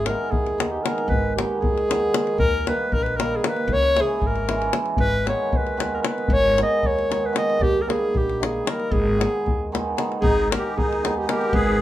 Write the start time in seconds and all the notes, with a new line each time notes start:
Already playing: G#1
0.06 D#3 G#3 B3 D#4 A#4, davul high
0.31 D#2 G#4, davul low
0.46 davul high
0.58 D#3 G#3 B3 D#4, davul high
0.71 G4
0.83 D#3 G#3 B3 D#4 A#4, davul high
0.98 davul high
1.08 G#1 B4, davul low
1.36 D#3 G#3 B3 D#4 G4, davul high
1.60 D#2 G#4, davul low
1.78 davul high
1.88 D#3 G#3 B3 D#4, davul high
2.14 D#3 G#3 B3 D#4, davul high
2.27 davul high
2.38 D#2 A#4, davul low
2.67 D#3 G3 A#3 D#4 B4, davul high
2.92 A#1 A#4, davul low
3.03 B4, davul high
3.16 D#3 G3 A#3 D#4 A#4, davul high
3.36 G#4
3.44 D#3 G3 A#3 D#4, davul high
3.48 B4
3.56 davul high
3.68 C#2, davul low
3.73 C#5
3.83 davul high
3.96 E3 G#3 C#4 E4, davul high
4.01 G#4
4.22 G#1, davul low
4.27 A#4
4.36 davul high
4.48 E3 G#3 C#4 E4, davul high
4.62 davul high
4.72 E3 G#3 C#4 E4, davul high
4.86 davul high
4.97 G#1 B4, davul low
5.25 D#3 G#3 B3 D#4 C#5, davul high
5.53 D#2 B4, davul low
5.67 davul high
5.77 D#3 G#3 B3 D#4, davul high
5.94 A#4 B4
6.02 D#3 G#3 B3 D#4 A#4, davul high
6.06 B4
6.18 davul high
6.28 G#1, davul low
6.33 C#5
6.57 D#3 G#3 B3 D#4, davul high
6.63 D#5
6.83 D#2 C#5, davul low
6.99 davul high
7.09 D#3 G#3 B3 D#4, davul high
7.26 B4
7.33 D#3 G#3 B3 D#4, davul high
7.38 D#5
7.50 davul high
7.60 D#2 G4, davul low
7.81 A#4
7.87 D#3 G3 A#3 D#4 G#4, davul high
8.14 A#1 G4, davul low
8.29 davul high
8.40 D#3 G3 A#3 D#4, davul high
8.45 G#4
8.65 D#3 G3 A#3 D#4 A#4, davul high
8.80 davul high
8.92 G#1 G#4, davul low
9.18 D#3 G#3 B3 D#4, davul high
9.46 D#2, davul low
9.72 D#3 G#3 B3 D#4, davul high
9.97 D#3 G#3 B3 D#4, davul high
10.12 davul high
10.21 G#1 D#4 G#4, davul low
10.51 D#3 G#3 B3 D#4 G4 A#4, davul high
10.76 D#2 D#4 G#4, davul low
10.93 davul high
11.03 D#3 G#3 B3 D#4, davul high
11.17 D#4 G4
11.28 D#3 G#3 B3 D#4 G4 A#4, davul high
11.41 davul high
11.53 G#1 G#4 B4, davul low